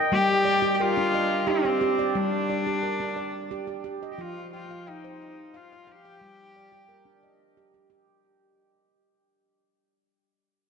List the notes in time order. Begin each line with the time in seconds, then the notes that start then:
Already playing: D#5 G5
0.12 G3 G4
0.45 D5
0.62 G4
0.74 G4
0.80 F4 A#4
0.97 D4
1.14 D#5
1.47 C4 G4
1.65 G4
1.81 G4
1.99 D5
2.15 G3 D4
2.50 D5
2.67 G4
2.83 A#4
3.00 D4
3.16 D5
3.51 G4
3.67 G4
3.84 G4
4.03 D#5
4.12 G4
4.18 F3 F4
4.53 F4 G5
4.71 F5
4.87 D#4 G5
5.04 C5
5.22 G5
5.54 F4 F5
5.72 F5
5.87 F5
5.91 G4
6.05 G5
6.21 G3
6.56 D5
6.72 G4
6.89 A#4
7.05 D4
7.23 D#5
7.57 G4
7.74 G4
7.90 G4